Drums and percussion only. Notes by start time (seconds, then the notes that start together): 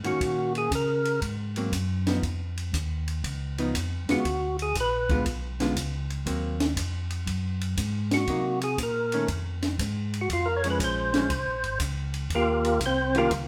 0.04 ride
0.21 kick, ride
0.55 ride
0.71 kick, hi-hat pedal, ride
1.05 ride
1.22 kick, ride
1.56 ride
1.72 kick, hi-hat pedal, ride
2.07 snare, ride
2.23 kick, ride
2.58 ride
2.73 kick, hi-hat pedal, ride
3.08 ride
3.24 kick, ride
3.58 ride
3.75 kick, hi-hat pedal, ride
4.09 snare, ride
4.25 kick, ride
4.59 ride
4.75 kick, hi-hat pedal, ride
5.09 kick, ride
5.26 kick, ride
5.60 snare, ride
5.76 kick, hi-hat pedal, ride
6.10 ride
6.26 kick, ride
6.60 snare, ride
6.77 kick, hi-hat pedal, ride
7.10 ride
7.27 kick, ride
7.61 ride
7.77 kick, hi-hat pedal, ride
8.11 snare, ride
8.27 kick, ride
8.61 ride
8.78 kick, hi-hat pedal, ride
9.12 ride
9.28 kick, ride
9.62 snare, ride
9.79 kick, hi-hat pedal, ride
10.14 ride
10.30 kick, ride
10.64 ride
10.80 kick, hi-hat pedal, ride
11.14 snare, ride
11.30 kick, ride
11.64 ride
11.80 kick, hi-hat pedal, ride
12.14 ride
12.30 kick, ride
12.65 ride
12.80 kick, hi-hat pedal, ride
13.15 ride
13.31 kick, ride